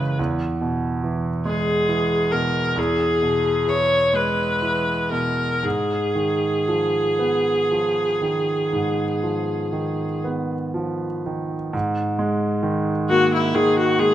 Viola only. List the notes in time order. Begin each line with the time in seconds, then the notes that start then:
Already playing: B4
1.46 G#4
2.32 A#4
2.78 G#4
3.69 C#5
4.15 B4
5.11 A#4
5.64 G#4
13.09 F#4
13.33 E4
13.55 G#4
13.78 F#4
13.99 G#4